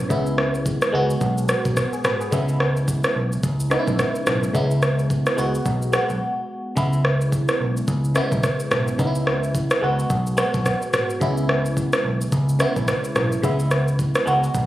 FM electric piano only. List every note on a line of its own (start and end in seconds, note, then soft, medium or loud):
0.00 0.09 C#3 medium
0.00 0.10 G#3 medium
0.00 0.11 B3 medium
0.00 0.12 C#4 medium
0.09 0.93 C#3 medium
0.09 0.91 G#3 medium
0.09 0.92 B3 medium
0.09 0.94 E4 medium
0.92 1.41 G#3 medium
0.92 1.42 B3 medium
0.92 1.42 F#4 loud
1.93 2.04 G#4 medium
2.05 2.20 G#4 medium
2.05 2.20 B4 medium
2.21 2.47 G#4 medium
2.31 3.27 C#3 medium
2.31 3.27 G#3 medium
2.31 3.28 B3 medium
2.31 3.28 E4 medium
3.70 4.43 C#3 medium
3.70 4.43 G#3 medium
3.70 4.44 B3 medium
3.70 3.79 D#4 medium
3.79 4.47 E4 medium
4.53 5.37 C#3 medium
4.53 5.35 G#3 medium
4.53 5.37 B3 medium
4.53 5.39 E4 loud
5.37 5.85 G#3 medium
5.37 5.86 B3 medium
5.37 5.87 F#4 medium
5.92 6.65 G#3 medium
5.92 6.66 B3 medium
5.92 6.66 F#4 medium
6.76 7.71 C#3 medium
6.76 7.72 G#3 medium
6.76 7.72 B3 medium
6.76 7.73 E4 loud
8.15 8.87 C#3 medium
8.15 8.88 G#3 medium
8.15 8.88 B3 medium
8.15 8.89 E4 medium
8.98 9.82 C#3 medium
8.98 9.80 G#3 medium
8.98 9.81 B3 medium
8.98 9.07 D#4 medium
9.07 9.86 E4 medium
9.81 10.30 G#3 medium
9.81 10.31 B3 medium
9.81 10.31 F#4 loud
10.37 11.10 G#3 medium
10.37 11.10 B3 medium
10.37 11.11 F#4 medium
11.20 12.16 C#3 medium
11.20 12.16 G#3 medium
11.20 12.17 B3 medium
11.20 12.17 E4 loud
12.59 13.32 C#3 medium
12.59 13.32 G#3 medium
12.59 13.33 B3 medium
12.59 13.33 E4 medium
13.42 14.26 C#3 medium
13.42 14.24 G#3 medium
13.42 14.26 B3 medium
13.42 14.27 E4 loud
14.26 14.66 G#3 medium
14.26 14.66 B3 medium
14.26 14.66 F#4 medium